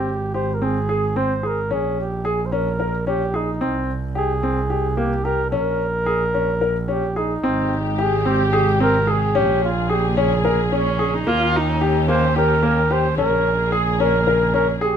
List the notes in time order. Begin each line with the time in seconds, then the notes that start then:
Already playing: G#1 G4
0.34 G4 C5
0.54 A#4
0.62 C4 G#4
0.89 G#4
1.16 C4 C5
1.43 G#4
1.47 A#4
1.71 A#1 C#4 G#4
2.01 G4
2.25 G#4
2.46 C5
2.52 C#4 A#4
2.80 A#4
3.07 C#4 G4
3.34 D#4 G#4
3.61 C2 C4
4.15 G4 G#4
4.43 C4
4.70 G4
4.97 A#3 G4
5.25 G4 A#4
5.50 A#1 C#4 A#4
6.06 G#4
6.34 C#4
6.61 A#4
6.88 C#4 G4
7.16 D#4 G#4
7.43 G#1 C3 G#3 C4 G4
7.98 G4 G#4
8.25 C4 G4
8.53 G#4
8.80 C4 A#4
9.07 G#4
9.35 A#1 C#3 A#3 C#4 G4 G#4
9.65 F4
9.89 G4 G#4
10.17 C#4 G#4
10.45 A#4
10.72 C#4
10.99 G#4
11.14 D#4
11.26 D#2 D#3 A#3 C#4 F4 G4
11.56 D#4
11.81 G4
12.08 A#3 C5
12.36 G4 A#4
12.63 A#3
12.90 G4 C5
13.17 A#1 C#3 A#3 C#4 G#4 A#4
13.72 G#4
14.00 C#4 A#4
14.27 A#4
14.54 C#4 A#4
14.81 G4 G#4